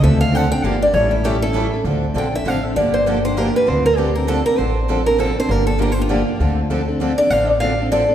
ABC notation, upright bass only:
X:1
M:3/4
L:1/8
Q:"Swing" 1/4=198
K:Dm
V:1 name="Upright bass" clef=bass
D,,4 G,,,2 | A,,,6 | D,,2 B,,,2 A,,,2 | G,,,6 |
D,,6 | A,,,6 | G,,,6 | D,,6 |
A,,,6 |]